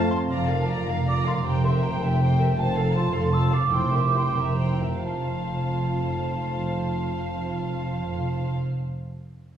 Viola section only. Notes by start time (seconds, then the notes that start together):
Already playing: F4
0.31 F4
0.49 A#4
0.68 F4
0.89 A#4
1.06 F4
1.26 A#4
1.46 G4
1.65 A#4
1.84 G4
2.03 A#4
2.21 G4
2.39 A#4
2.58 F4
2.77 A4
2.96 F4
3.15 A4
3.33 F4
3.52 A4
3.73 E4
3.93 G4
4.15 E4
4.36 G4
4.59 E4
4.82 G4
5.04 F4